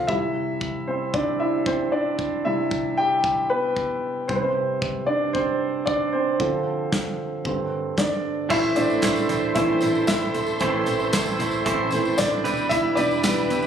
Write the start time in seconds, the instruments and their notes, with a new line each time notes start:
Already playing: grand piano D3 F3 C4 F4
0.07 grand piano C3 G3 E4 E5, kick
0.61 kick
0.87 grand piano C4 C5
1.14 grand piano D4 D5, kick
1.40 grand piano E4 E5
1.66 grand piano C4 C5, kick
1.92 grand piano D4 D5
2.19 kick
2.45 grand piano C3 G3 E4 E5
2.71 kick
2.97 grand piano G4 G5
3.24 kick
3.50 grand piano B3 B4
3.76 kick
4.28 grand piano C3 G3 C4 C5, kick
4.35 grand piano B4
4.42 grand piano C4 C5
4.82 kick
5.07 grand piano D4 D5
5.33 grand piano C4 C5, kick
5.86 grand piano D4 D5, kick
6.12 grand piano C4 C5
6.40 grand piano D3 F3 C4, kick
6.92 kick, snare
7.45 grand piano G2 D3 C4, kick
7.98 grand piano D4 D5, kick, snare
8.49 upright bass A1, clean electric guitar A2 E3 A3 C4 E4 C5, grand piano E4 E5, string section A4 C5 E5 C6, kick, crash, tambourine
8.75 upright bass A1, grand piano E3 A3 C4 D4 D5, clean electric guitar A3 C4 E4 C5, closed hi-hat, tambourine
8.90 tambourine
9.02 upright bass A1, clean electric guitar A3 C4 E4 C5, kick, snare, closed hi-hat, tambourine
9.16 tambourine
9.29 upright bass A1, clean electric guitar A3 C4 E4 C5, closed hi-hat, floor tom, tambourine
9.55 upright bass A1, clean electric guitar A2 E3 A3 C4 E4 C5, grand piano E3 A3 C4 E4 E5, kick, closed hi-hat
9.81 upright bass A1, clean electric guitar A3 C4 E4 C5, closed hi-hat, tambourine
9.95 tambourine
10.07 upright bass A1, grand piano E4 E5, kick, snare, closed hi-hat, tambourine
10.34 upright bass A1, closed hi-hat, floor tom, tambourine
10.46 tambourine
10.59 upright bass A1, clean electric guitar A2 E3 A3 C4 E4 C5, grand piano E3 A3 C4 C5, kick, closed hi-hat, tambourine
10.86 upright bass A1, clean electric guitar A3 C4 E4 C5, closed hi-hat, tambourine
11.00 tambourine
11.12 upright bass A1, clean electric guitar A3 C4 E4 C5, kick, snare, closed hi-hat, tambourine
11.26 tambourine
11.39 upright bass A1, clean electric guitar A3 C4 E4 C5, closed hi-hat, floor tom, tambourine
11.51 tambourine
11.65 upright bass A1, clean electric guitar A2 E3 A3 C4 E4 C5, kick, closed hi-hat
11.91 upright bass A1, grand piano E3 A3 C4, clean electric guitar A3 C4 E4 C5, closed hi-hat, tambourine
12.05 tambourine
12.18 upright bass A1, grand piano D4 D5, kick, snare, closed hi-hat, tambourine
12.44 upright bass E1, clean electric guitar E3 G3 E4 G4 B4, string section G4 B4 B5, closed hi-hat, floor tom, tambourine
12.57 tambourine
12.69 grand piano E4 E5, kick, closed hi-hat, tambourine
12.95 upright bass E1, grand piano D4 D5, clean electric guitar E4 G4 B4, closed hi-hat, tambourine
13.11 tambourine
13.23 upright bass E1, grand piano E3 G3 B3, clean electric guitar G3 E4 G4 B4, kick, snare, closed hi-hat, tambourine
13.37 tambourine
13.49 upright bass E1, clean electric guitar E4 G4 B4, closed hi-hat, floor tom, tambourine
13.62 tambourine